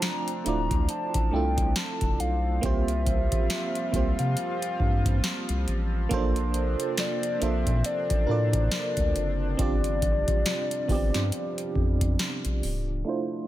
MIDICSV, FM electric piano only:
0, 0, Header, 1, 2, 480
1, 0, Start_track
1, 0, Tempo, 869565
1, 1452, Time_signature, 4, 2, 24, 8
1, 7438, End_track
2, 0, Start_track
2, 0, Title_t, "FM electric piano"
2, 0, Program_c, 0, 5
2, 0, Control_c, 0, 64, 127
2, 0, Note_on_c, 0, 57, 96
2, 0, Note_on_c, 0, 60, 93
2, 0, Note_on_c, 0, 62, 90
2, 0, Note_on_c, 0, 65, 91
2, 0, Note_on_c, 0, 72, 105
2, 0, Note_on_c, 0, 79, 67
2, 131, Note_off_c, 0, 57, 0
2, 134, Note_off_c, 0, 62, 0
2, 137, Note_off_c, 0, 60, 0
2, 140, Note_off_c, 0, 65, 0
2, 143, Note_off_c, 0, 72, 0
2, 244, Note_on_c, 0, 57, 76
2, 251, Note_on_c, 0, 62, 70
2, 256, Note_on_c, 0, 64, 70
2, 262, Note_on_c, 0, 65, 72
2, 268, Note_on_c, 0, 74, 83
2, 653, Note_off_c, 0, 57, 0
2, 656, Note_off_c, 0, 62, 0
2, 659, Note_off_c, 0, 64, 0
2, 662, Note_off_c, 0, 65, 0
2, 665, Note_off_c, 0, 74, 0
2, 725, Note_on_c, 0, 57, 80
2, 732, Note_on_c, 0, 62, 71
2, 738, Note_on_c, 0, 64, 75
2, 743, Note_on_c, 0, 65, 73
2, 749, Note_on_c, 0, 69, 84
2, 1332, Note_off_c, 0, 57, 0
2, 1335, Note_off_c, 0, 62, 0
2, 1338, Note_off_c, 0, 64, 0
2, 1341, Note_off_c, 0, 65, 0
2, 1344, Note_off_c, 0, 69, 0
2, 1442, Note_on_c, 0, 58, 97
2, 1448, Note_on_c, 0, 60, 93
2, 1454, Note_on_c, 0, 65, 86
2, 1459, Control_c, 0, 64, 0
2, 1460, Note_on_c, 0, 67, 87
2, 1461, Note_off_c, 0, 79, 0
2, 1466, Note_on_c, 0, 72, 109
2, 1567, Control_c, 0, 64, 127
2, 2050, Note_off_c, 0, 58, 0
2, 2053, Note_off_c, 0, 60, 0
2, 2056, Note_off_c, 0, 65, 0
2, 2059, Note_off_c, 0, 67, 0
2, 2062, Note_off_c, 0, 72, 0
2, 2163, Note_on_c, 0, 58, 75
2, 2170, Note_on_c, 0, 60, 68
2, 2176, Note_on_c, 0, 65, 65
2, 2181, Note_on_c, 0, 67, 68
2, 2188, Note_on_c, 0, 72, 79
2, 2959, Note_off_c, 0, 58, 0
2, 2962, Note_off_c, 0, 60, 0
2, 2965, Note_off_c, 0, 65, 0
2, 2968, Note_off_c, 0, 67, 0
2, 2971, Note_off_c, 0, 72, 0
2, 3363, Note_on_c, 0, 58, 118
2, 3370, Note_on_c, 0, 61, 87
2, 3376, Note_on_c, 0, 65, 105
2, 3380, Control_c, 0, 64, 0
2, 3381, Note_on_c, 0, 69, 106
2, 3387, Note_on_c, 0, 72, 127
2, 3405, Note_on_c, 0, 62, 105
2, 3412, Note_off_c, 0, 61, 0
2, 3481, Control_c, 0, 64, 127
2, 3971, Note_off_c, 0, 58, 0
2, 3977, Note_off_c, 0, 65, 0
2, 3980, Note_off_c, 0, 69, 0
2, 3983, Note_off_c, 0, 72, 0
2, 3992, Note_off_c, 0, 62, 0
2, 4083, Note_on_c, 0, 58, 81
2, 4090, Note_on_c, 0, 62, 68
2, 4096, Note_on_c, 0, 65, 68
2, 4101, Note_on_c, 0, 69, 70
2, 4107, Note_on_c, 0, 72, 83
2, 4493, Note_off_c, 0, 58, 0
2, 4496, Note_off_c, 0, 62, 0
2, 4499, Note_off_c, 0, 65, 0
2, 4501, Note_off_c, 0, 69, 0
2, 4505, Note_off_c, 0, 72, 0
2, 4564, Note_on_c, 0, 70, 81
2, 4570, Note_on_c, 0, 62, 73
2, 4575, Note_on_c, 0, 65, 73
2, 4582, Note_on_c, 0, 69, 75
2, 4588, Note_on_c, 0, 74, 88
2, 5171, Note_off_c, 0, 70, 0
2, 5174, Note_off_c, 0, 62, 0
2, 5177, Note_off_c, 0, 65, 0
2, 5180, Note_off_c, 0, 69, 0
2, 5183, Note_off_c, 0, 74, 0
2, 5284, Note_on_c, 0, 60, 97
2, 5290, Note_on_c, 0, 62, 91
2, 5296, Note_on_c, 0, 65, 93
2, 5299, Control_c, 0, 64, 0
2, 5302, Note_on_c, 0, 67, 91
2, 5308, Note_on_c, 0, 74, 108
2, 5406, Control_c, 0, 64, 127
2, 5891, Note_off_c, 0, 60, 0
2, 5894, Note_off_c, 0, 62, 0
2, 5897, Note_off_c, 0, 65, 0
2, 5900, Note_off_c, 0, 67, 0
2, 5903, Note_off_c, 0, 74, 0
2, 6004, Note_on_c, 0, 59, 71
2, 6010, Note_on_c, 0, 62, 77
2, 6017, Note_on_c, 0, 65, 85
2, 6022, Note_on_c, 0, 67, 85
2, 6029, Note_on_c, 0, 74, 97
2, 6040, Note_on_c, 0, 60, 90
2, 6050, Note_off_c, 0, 59, 0
2, 6803, Note_off_c, 0, 62, 0
2, 6806, Note_off_c, 0, 65, 0
2, 6809, Note_off_c, 0, 67, 0
2, 6812, Note_off_c, 0, 74, 0
2, 6818, Note_off_c, 0, 60, 0
2, 7202, Note_on_c, 0, 57, 95
2, 7208, Note_on_c, 0, 62, 90
2, 7214, Note_on_c, 0, 64, 95
2, 7220, Control_c, 0, 64, 0
2, 7220, Note_on_c, 0, 65, 91
2, 7226, Note_on_c, 0, 72, 110
2, 7310, Control_c, 0, 64, 127
2, 7438, Note_off_c, 0, 57, 0
2, 7438, Note_off_c, 0, 62, 0
2, 7438, Note_off_c, 0, 64, 0
2, 7438, Note_off_c, 0, 65, 0
2, 7438, Note_off_c, 0, 72, 0
2, 7438, End_track
0, 0, End_of_file